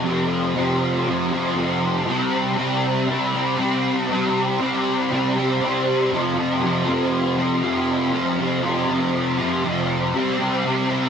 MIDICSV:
0, 0, Header, 1, 2, 480
1, 0, Start_track
1, 0, Tempo, 505051
1, 46, Time_signature, 4, 2, 24, 8
1, 10541, End_track
2, 0, Start_track
2, 0, Title_t, "Distorted electric guitar"
2, 0, Program_c, 0, 30
2, 0, Note_on_c, 0, 60, 78
2, 44, Note_on_c, 0, 41, 86
2, 54, Note_on_c, 0, 48, 88
2, 71, Note_on_c, 0, 53, 94
2, 513, Note_off_c, 0, 41, 0
2, 524, Note_on_c, 0, 41, 79
2, 529, Note_off_c, 0, 48, 0
2, 540, Note_on_c, 0, 48, 84
2, 542, Note_off_c, 0, 53, 0
2, 553, Note_on_c, 0, 53, 88
2, 987, Note_off_c, 0, 60, 0
2, 997, Note_off_c, 0, 41, 0
2, 1008, Note_on_c, 0, 41, 88
2, 1018, Note_off_c, 0, 48, 0
2, 1024, Note_off_c, 0, 53, 0
2, 1029, Note_on_c, 0, 48, 101
2, 1036, Note_on_c, 0, 53, 106
2, 1241, Note_off_c, 0, 53, 0
2, 1253, Note_on_c, 0, 53, 83
2, 1265, Note_off_c, 0, 48, 0
2, 1276, Note_on_c, 0, 48, 65
2, 1461, Note_off_c, 0, 41, 0
2, 1473, Note_on_c, 0, 41, 78
2, 1481, Note_off_c, 0, 48, 0
2, 1490, Note_off_c, 0, 53, 0
2, 1492, Note_on_c, 0, 48, 84
2, 1502, Note_on_c, 0, 53, 81
2, 1946, Note_off_c, 0, 41, 0
2, 1951, Note_off_c, 0, 48, 0
2, 1961, Note_off_c, 0, 53, 0
2, 1962, Note_on_c, 0, 48, 92
2, 1975, Note_on_c, 0, 55, 98
2, 1991, Note_on_c, 0, 60, 93
2, 2435, Note_off_c, 0, 48, 0
2, 2439, Note_on_c, 0, 48, 75
2, 2455, Note_off_c, 0, 55, 0
2, 2458, Note_on_c, 0, 55, 76
2, 2462, Note_off_c, 0, 60, 0
2, 2466, Note_on_c, 0, 60, 85
2, 2915, Note_off_c, 0, 48, 0
2, 2926, Note_on_c, 0, 48, 95
2, 2928, Note_off_c, 0, 55, 0
2, 2940, Note_on_c, 0, 55, 98
2, 2957, Note_off_c, 0, 60, 0
2, 2961, Note_on_c, 0, 60, 94
2, 3165, Note_off_c, 0, 60, 0
2, 3169, Note_on_c, 0, 60, 73
2, 3183, Note_off_c, 0, 55, 0
2, 3195, Note_on_c, 0, 55, 64
2, 3391, Note_off_c, 0, 48, 0
2, 3402, Note_on_c, 0, 48, 79
2, 3404, Note_off_c, 0, 55, 0
2, 3415, Note_on_c, 0, 55, 86
2, 3424, Note_off_c, 0, 60, 0
2, 3427, Note_on_c, 0, 60, 82
2, 3880, Note_off_c, 0, 48, 0
2, 3891, Note_on_c, 0, 48, 85
2, 3892, Note_off_c, 0, 55, 0
2, 3903, Note_on_c, 0, 55, 89
2, 3905, Note_off_c, 0, 60, 0
2, 3916, Note_on_c, 0, 60, 107
2, 4361, Note_off_c, 0, 48, 0
2, 4370, Note_off_c, 0, 55, 0
2, 4373, Note_on_c, 0, 48, 80
2, 4379, Note_off_c, 0, 60, 0
2, 4382, Note_on_c, 0, 55, 85
2, 4390, Note_on_c, 0, 60, 89
2, 4842, Note_off_c, 0, 48, 0
2, 4854, Note_on_c, 0, 48, 91
2, 4855, Note_off_c, 0, 55, 0
2, 4867, Note_on_c, 0, 55, 95
2, 4869, Note_off_c, 0, 60, 0
2, 4880, Note_on_c, 0, 60, 100
2, 5086, Note_off_c, 0, 60, 0
2, 5097, Note_on_c, 0, 60, 70
2, 5112, Note_off_c, 0, 55, 0
2, 5123, Note_on_c, 0, 55, 58
2, 5321, Note_off_c, 0, 48, 0
2, 5333, Note_on_c, 0, 48, 78
2, 5340, Note_off_c, 0, 55, 0
2, 5349, Note_off_c, 0, 60, 0
2, 5352, Note_on_c, 0, 55, 77
2, 5360, Note_on_c, 0, 60, 82
2, 5797, Note_off_c, 0, 48, 0
2, 5804, Note_on_c, 0, 41, 92
2, 5806, Note_off_c, 0, 55, 0
2, 5810, Note_off_c, 0, 60, 0
2, 5824, Note_on_c, 0, 48, 99
2, 5835, Note_on_c, 0, 53, 102
2, 6041, Note_off_c, 0, 53, 0
2, 6045, Note_on_c, 0, 53, 78
2, 6062, Note_off_c, 0, 48, 0
2, 6073, Note_on_c, 0, 48, 66
2, 6273, Note_off_c, 0, 41, 0
2, 6277, Note_on_c, 0, 41, 90
2, 6289, Note_off_c, 0, 48, 0
2, 6300, Note_on_c, 0, 48, 101
2, 6305, Note_off_c, 0, 53, 0
2, 6309, Note_on_c, 0, 53, 112
2, 6505, Note_off_c, 0, 53, 0
2, 6509, Note_on_c, 0, 53, 78
2, 6528, Note_off_c, 0, 48, 0
2, 6539, Note_on_c, 0, 48, 64
2, 6993, Note_off_c, 0, 53, 0
2, 7004, Note_on_c, 0, 53, 78
2, 7016, Note_off_c, 0, 48, 0
2, 7027, Note_on_c, 0, 48, 64
2, 7236, Note_off_c, 0, 41, 0
2, 7239, Note_on_c, 0, 41, 81
2, 7245, Note_off_c, 0, 48, 0
2, 7252, Note_off_c, 0, 53, 0
2, 7257, Note_on_c, 0, 48, 84
2, 7264, Note_on_c, 0, 53, 90
2, 7703, Note_off_c, 0, 41, 0
2, 7715, Note_off_c, 0, 48, 0
2, 7715, Note_on_c, 0, 41, 93
2, 7725, Note_off_c, 0, 53, 0
2, 7726, Note_on_c, 0, 48, 100
2, 7737, Note_on_c, 0, 53, 101
2, 7955, Note_off_c, 0, 53, 0
2, 7967, Note_on_c, 0, 53, 70
2, 7973, Note_off_c, 0, 48, 0
2, 7985, Note_on_c, 0, 48, 61
2, 8180, Note_off_c, 0, 41, 0
2, 8191, Note_on_c, 0, 41, 94
2, 8196, Note_off_c, 0, 48, 0
2, 8208, Note_on_c, 0, 48, 104
2, 8210, Note_off_c, 0, 53, 0
2, 8222, Note_on_c, 0, 53, 107
2, 8424, Note_off_c, 0, 53, 0
2, 8436, Note_on_c, 0, 53, 82
2, 8456, Note_off_c, 0, 48, 0
2, 8467, Note_on_c, 0, 48, 62
2, 8678, Note_off_c, 0, 41, 0
2, 8899, Note_off_c, 0, 53, 0
2, 8910, Note_on_c, 0, 53, 74
2, 8932, Note_off_c, 0, 48, 0
2, 8943, Note_on_c, 0, 48, 62
2, 9152, Note_on_c, 0, 41, 76
2, 9157, Note_off_c, 0, 48, 0
2, 9168, Note_off_c, 0, 53, 0
2, 9168, Note_on_c, 0, 48, 81
2, 9180, Note_on_c, 0, 53, 80
2, 9615, Note_off_c, 0, 48, 0
2, 9624, Note_off_c, 0, 41, 0
2, 9626, Note_on_c, 0, 48, 82
2, 9636, Note_off_c, 0, 53, 0
2, 9640, Note_on_c, 0, 55, 98
2, 9655, Note_on_c, 0, 60, 94
2, 9861, Note_off_c, 0, 60, 0
2, 9864, Note_on_c, 0, 60, 77
2, 9891, Note_off_c, 0, 55, 0
2, 9895, Note_on_c, 0, 55, 65
2, 10103, Note_off_c, 0, 48, 0
2, 10106, Note_on_c, 0, 48, 95
2, 10115, Note_off_c, 0, 55, 0
2, 10119, Note_on_c, 0, 55, 100
2, 10126, Note_off_c, 0, 60, 0
2, 10129, Note_on_c, 0, 60, 113
2, 10340, Note_off_c, 0, 60, 0
2, 10344, Note_on_c, 0, 60, 89
2, 10365, Note_off_c, 0, 55, 0
2, 10369, Note_on_c, 0, 55, 63
2, 10541, Note_off_c, 0, 48, 0
2, 10541, Note_off_c, 0, 55, 0
2, 10541, Note_off_c, 0, 60, 0
2, 10541, End_track
0, 0, End_of_file